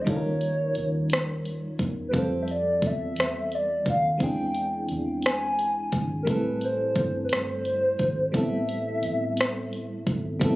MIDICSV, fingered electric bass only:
0, 0, Header, 1, 2, 480
1, 0, Start_track
1, 0, Key_signature, 0, "minor"
1, 0, Tempo, 689655
1, 47, Time_signature, 6, 3, 24, 8
1, 7348, End_track
2, 0, Start_track
2, 0, Title_t, "Fingered electric bass"
2, 0, Program_c, 0, 33
2, 57, Note_on_c, 0, 39, 90
2, 504, Note_off_c, 0, 39, 0
2, 542, Note_on_c, 0, 39, 77
2, 1227, Note_off_c, 0, 39, 0
2, 1255, Note_on_c, 0, 40, 74
2, 1467, Note_off_c, 0, 40, 0
2, 1494, Note_on_c, 0, 41, 84
2, 1943, Note_off_c, 0, 41, 0
2, 1970, Note_on_c, 0, 40, 75
2, 2185, Note_off_c, 0, 40, 0
2, 2221, Note_on_c, 0, 40, 74
2, 2666, Note_off_c, 0, 40, 0
2, 2692, Note_on_c, 0, 39, 74
2, 2906, Note_off_c, 0, 39, 0
2, 2933, Note_on_c, 0, 40, 85
2, 3382, Note_off_c, 0, 40, 0
2, 3420, Note_on_c, 0, 40, 83
2, 4106, Note_off_c, 0, 40, 0
2, 4129, Note_on_c, 0, 32, 78
2, 4344, Note_off_c, 0, 32, 0
2, 4372, Note_on_c, 0, 33, 84
2, 4822, Note_off_c, 0, 33, 0
2, 4849, Note_on_c, 0, 31, 89
2, 5064, Note_off_c, 0, 31, 0
2, 5100, Note_on_c, 0, 31, 84
2, 5546, Note_off_c, 0, 31, 0
2, 5572, Note_on_c, 0, 32, 73
2, 5786, Note_off_c, 0, 32, 0
2, 5812, Note_on_c, 0, 33, 87
2, 6262, Note_off_c, 0, 33, 0
2, 6302, Note_on_c, 0, 33, 73
2, 6987, Note_off_c, 0, 33, 0
2, 7013, Note_on_c, 0, 32, 82
2, 7226, Note_off_c, 0, 32, 0
2, 7256, Note_on_c, 0, 33, 94
2, 7348, Note_off_c, 0, 33, 0
2, 7348, End_track
0, 0, End_of_file